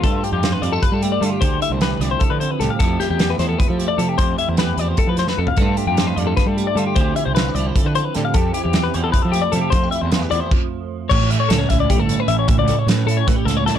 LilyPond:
<<
  \new Staff \with { instrumentName = "Clean electric guitar" } { \time 7/8 \key f \lydian \tempo 4 = 152 a'8 g'16 g'8 b'16 d''16 a'16 b'16 a'16 g'16 d''16 a'16 g'16 | c''8 e''16 c''16 b'8 d''16 c''16 a'16 b'16 c''16 b'16 a'16 f''16 | a'8 g'16 g'8 b'16 c''16 a'16 b'16 a'16 g'16 d''16 a'16 g'16 | c''8 e''16 c''16 b'8 d''16 c''16 a'16 b'16 c''16 b'16 a'16 f''16 |
a'8 g'16 g'8 b'16 d''16 a'16 b'16 a'16 g'16 d''16 a'16 g'16 | c''8 e''16 c''16 b'8 d''16 c''16 a'16 b'16 c''16 b'16 a'16 f''16 | a'8 g'16 g'8 b'16 c''16 a'16 b'16 a'16 g'16 d''16 a'16 g'16 | c''8 e''16 c''16 b'8 d''16 c''16 r4. |
cis''8 e''16 cis''16 a'16 cis''16 e''16 d''16 g'16 a'8 b'16 e''16 cis''16 | e''16 d''8 cis''16 b'8 a'16 cis''16 b'16 g'16 a'16 cis''16 a'16 cis''16 | }
  \new Staff \with { instrumentName = "Clean electric guitar" } { \time 7/8 \key f \lydian << { <a f'>8 d'8 f'8 c'16 d'8. a8 f'8 | g'8 e'8 g'8 e'4 c'8 g'8 | <f a e' g'>8 e'8 g'8 e'4 a8 a'8 | g'8 e'8 g'8 e'2 |
<g a d' f'>8 d'8 f'8 d'4 a8 f'8 | <f c' e' g'>8 e'8 f'16 g'16 e'4 c'8 g'8 | g'8 e'8 g'8 e'4 a8 a'8 | f'16 g'16 e'8 f'16 g'16 e'8 r4. |
r4 cis'8 e'4 cis'8 e'8 | r4 cis'8 e'4 cis'8 e'8 | } \\ { <g, f>4. g4. d8 | d4. f4. a,8 | f,4. f4. c8 | f,4. f4. f,8 |
g,4. g4. d8 | d4. f4. a,8 | f,4. f4. c8 | f,4. f2 |
a,8 a4. a4. | a,8 a4. a4. | } >> }
  \new Staff \with { instrumentName = "Picked electric bass" } { \clef bass \time 7/8 \key f \lydian g,8 r16 f,8. f,8 r16 g8 r16 g16 r16 | d,8 r16 c,8. c,8 r16 d8 r16 c,16 r16 | f,8 r16 e,8. e,8 r16 f8 r16 f16 r16 | f,8 r16 e,8. e,8 r16 f8 r16 f,16 r16 |
g,8 r16 f,8. f,8 r16 g8 r16 g16 r16 | d,8 r16 c,8. c,8 r16 d8 r16 d16 r16 | f,8 r16 e,8. e,8 r16 f8 r16 f16 r16 | f,8 r16 e,8. e,16 r4. r16 |
a,,16 a,,8 r16 cis,8 cis,8. g,,8 r16 a,,8~ | a,,16 cis,8 r16 a,8 a,8 r8 cis,8. e,16 | }
  \new DrumStaff \with { instrumentName = "Drums" } \drummode { \time 7/8 <hh bd>8 hh8 <hh sn>8 hh8 <hh bd>8 hh8 hh8 | <hh bd>8 hh8 <hh sn>8 <hh sn>8 <hh bd>8 hh8 <hh sn>8 | <hh bd>8 <hh sn>8 <hh sn>8 <hh sn>8 <hh bd>8 hh8 hh8 | <hh bd>8 hh8 <hh sn>8 hh8 <hh bd>8 <hh sn>16 sn8 tomfh16 |
<hh bd>8 hh8 <hh sn>8 hh8 <hh bd sn>8 hh8 hh8 | <hh bd>8 hh8 <hh sn>8 hh8 <hh bd>8 hh8 <hh sn>8 | <hh bd>8 hh8 <hh sn>8 hh8 <hh bd>8 hh8 hh8 | <hh bd>8 hh8 <hh sn>8 hh8 <cymc bd>4. |
<cymc bd>8 hh8 <hh sn>8 <hh bd sn>8 <hh bd>8 hh8 hh8 | <hh bd>8 hh8 <hh sn>8 hh8 <hh bd sn>8 <hh sn>8 <hh sn>8 | }
>>